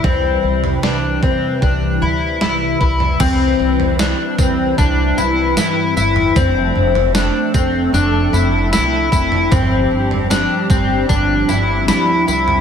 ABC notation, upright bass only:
X:1
M:4/4
L:1/16
Q:1/4=76
K:C
V:1 name="Upright bass" clef=bass
C,,2 C,,2 C,,2 C,2 C,,2 D,,2 C,,2 C,,2 | C,,2 C,,3 z C,,2 C,,2 C,,2 G,,2 G,,,2 | F,,,2 F,,,3 z F,,,2 F,,,2 F,,,2 C,,2 F,,,2 | G,,,2 G,,,3 z G,,,2 G,,,2 G,,,2 D,,2 C,,2 |]